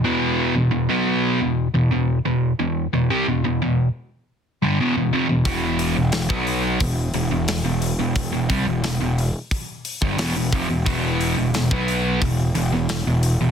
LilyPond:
<<
  \new Staff \with { instrumentName = "Distorted electric guitar" } { \clef bass \time 4/4 \key e \minor \tempo 4 = 89 <e, b, e>8. <e, b,>16 <e, b,>16 <b, fis b>8. <e, b,>8 <e, b,>16 <e, b,>8 <e, b,>8 <e, b,>16~ | <e, b,>16 <e, b,>16 <c g>16 <e, b,>16 <e, b,>16 <e, b,>8 r4 <g, d>16 <e, b,>16 <e, b,>16 <f, c>16 <e, b,>16 | <e, b, e>8. <e, b,>16 <e, b,>16 <b, fis b>8. <e, b,>8 <e, b,>16 <e, b,>8 <e, b,>8 <e, b,>16~ | <e, b,>16 <e, b,>16 <c g>16 <e, b,>16 <e, b,>16 <e, b,>8 r4 <g, d>16 <e, b,>16 <e, b,>16 <f, c>16 <e, b,>16 |
<e, b, e>8. <e, b,>16 <e, b,>16 <b, fis b>8. <e, b,>8 <e, b,>16 <e, b,>8 <e, b,>8 <e, b,>16 | }
  \new Staff \with { instrumentName = "Picked electric bass" } { \clef bass \time 4/4 \key e \minor r1 | r1 | e,,8. e,,16 e,,16 b,,8. e,,8 e,,16 e,,8 e,,8 e,,16~ | e,,16 e,,16 c,16 e,,16 e,,16 e,,8 r4 g,,16 e,,16 e,,16 f,,16 e,,16 |
e,,8. e,,16 e,,16 b,,8. e,,8 e,,16 e,,8 e,,8 e,,16 | }
  \new DrumStaff \with { instrumentName = "Drums" } \drummode { \time 4/4 r4 r4 r4 r4 | r4 r4 r4 r4 | <hho bd>8 hho8 <hho sn>16 bd16 hho8 <hho bd>8 hho8 <hho sn>8 hho8 | <hho bd>8 <hho bd>8 <hho sn>8 hho8 <hho bd>8 hho16 bd16 <hho sn>8 <hho bd>8 |
<hho bd>8 hho8 <hho sn>16 bd16 hho8 <hho bd>8 hho8 <hho sn>8 hho8 | }
>>